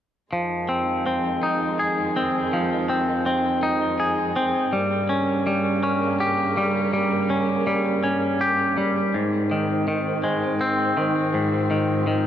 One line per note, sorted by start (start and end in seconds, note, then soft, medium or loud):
0.33 4.69 F2 soft
0.33 4.69 D#3 soft
0.33 2.16 F3 soft
0.33 4.69 G#3 soft
0.69 1.05 C4 soft
1.06 2.15 C4 soft
1.43 3.26 D#4 soft
1.79 3.63 G#4 soft
2.16 2.88 C4 soft
2.53 4.37 F3 soft
2.89 3.25 C4 soft
3.26 4.35 C4 soft
3.63 4.73 D#4 soft
4.00 4.73 G#4 soft
4.36 4.73 C4 soft
4.73 9.09 G2 soft
4.73 9.10 C#3 soft
4.73 5.45 G3 soft
4.73 9.09 A#3 soft
5.09 5.82 C#4 soft
5.47 6.56 G3 soft
5.83 7.29 C#4 soft
6.20 8.04 G4 soft
6.57 6.92 G3 soft
6.93 7.66 G3 soft
7.30 8.02 C#4 soft
7.67 8.76 G3 soft
8.04 9.14 C#4 soft
8.41 9.14 G4 soft
8.78 9.14 G3 soft
9.14 10.98 G#2 soft
9.14 12.27 G#2 soft
9.14 11.32 D#3 soft
9.14 12.27 C4 soft
9.51 9.87 D#3 soft
9.88 10.96 D#3 soft
10.24 12.27 G#3 soft
10.61 12.27 C4 soft
10.97 11.70 D#3 soft
11.34 12.27 G#2 soft
11.34 12.27 F3 soft
11.71 12.06 D#3 soft
12.07 12.27 D#3 soft